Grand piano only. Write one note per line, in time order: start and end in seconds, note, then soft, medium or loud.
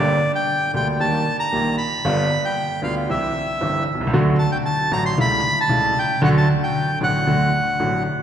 0.00 0.17 G1 medium
0.00 0.17 G2 medium
0.00 0.17 D3 medium
0.00 0.17 G3 medium
0.00 0.17 A#3 medium
0.00 0.17 G4 medium
0.74 0.96 D2 soft
0.74 0.96 D3 soft
0.74 0.96 G3 soft
0.74 0.96 A#3 soft
0.74 0.96 G4 soft
1.00 1.22 D#2 soft
1.00 1.22 D#3 soft
1.00 1.22 G3 soft
1.00 1.22 A#3 soft
1.00 1.22 G4 soft
1.52 1.75 A#1 soft
1.52 1.75 A#2 soft
1.52 1.75 D#3 soft
1.52 1.75 G3 soft
1.52 1.75 A#3 soft
1.52 1.75 G4 soft
2.05 2.27 G1 medium
2.05 2.27 G2 medium
2.05 2.27 D3 medium
2.05 2.27 G3 medium
2.05 2.27 B3 medium
2.05 2.27 F4 medium
2.82 3.05 D2 soft
2.82 3.05 D3 medium
2.82 3.04 G3 soft
2.82 3.05 B3 soft
2.82 3.05 F4 soft
3.09 3.31 C2 soft
3.09 3.31 C3 medium
3.09 3.31 E3 soft
3.09 3.31 G3 soft
3.09 3.31 C4 soft
3.09 3.31 G4 soft
3.61 3.83 G1 medium
3.61 3.83 G2 soft
3.61 3.83 E3 soft
3.61 3.83 G3 soft
3.61 3.83 C4 soft
3.61 3.83 G4 soft
3.95 4.01 B1 soft
4.01 4.07 C2 medium
4.07 4.13 C#2 medium
4.13 4.35 D2 medium
4.13 4.35 D3 medium
4.13 4.35 F#3 medium
4.13 4.35 A3 medium
4.13 4.35 F#4 medium
4.91 5.13 A1 medium
4.91 5.13 A2 medium
4.91 5.13 D3 soft
4.91 5.13 F#3 soft
4.91 5.13 A3 soft
4.91 5.13 F#4 soft
5.18 5.40 C#2 medium
5.18 5.40 C#3 soft
5.18 5.39 G3 soft
5.18 5.40 A3 soft
5.18 5.40 E4 soft
5.69 5.91 C#2 medium
5.69 5.91 C#3 medium
5.69 5.91 G3 soft
5.69 5.91 A3 soft
5.69 5.92 E4 soft
6.22 6.44 D2 medium
6.22 6.44 D3 medium
6.22 6.44 F#3 medium
6.22 6.44 A3 medium
6.22 6.44 F#4 medium
7.01 7.23 A1 soft
7.01 7.23 A2 soft
7.01 7.23 D3 soft
7.01 7.23 F#3 soft
7.01 7.23 A3 soft
7.01 7.23 F#4 soft
7.27 7.49 D2 medium
7.27 7.49 D3 medium
7.27 7.49 F#3 soft
7.27 7.49 A3 soft
7.27 7.49 F#4 soft
7.80 8.02 A1 soft
7.80 8.02 A2 medium
7.80 8.02 D3 soft
7.80 8.02 F#3 soft
7.80 8.02 A3 soft
7.80 8.02 F#4 soft